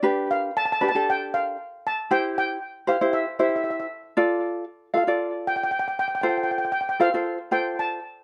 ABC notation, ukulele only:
X:1
M:4/4
L:1/16
Q:1/4=116
K:F
V:1 name="Ukulele"
[DG=B]4 z2 [DGB] [DGA]4- [DGA] z4 | [EGc]4 z2 [EGc] [EGc]2 z [EGc]4 z2 | [FAd]4 z2 [FAf] [FAd]4- [FAd] z4 | [FAc]4 z2 [FAc] [FAc]2 z [FAc]4 z2 |]